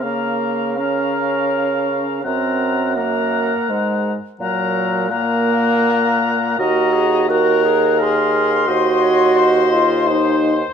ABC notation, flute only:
X:1
M:3/4
L:1/8
Q:1/4=84
K:Gblyd
V:1 name="Flute"
b2 b4 | b2 b3 z | b2 b4 | b2 b2 c'2- |
c'6 |]